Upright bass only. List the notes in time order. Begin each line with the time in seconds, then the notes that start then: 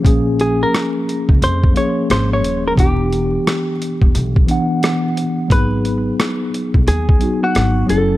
0.05 A#1
1.29 C#2
1.42 F2
2.10 G#1
2.44 D#1
2.78 E1
4.02 E1
4.14 B1
5.51 G#1
6.75 B1
6.87 D#2
7.56 G#1
7.90 F#1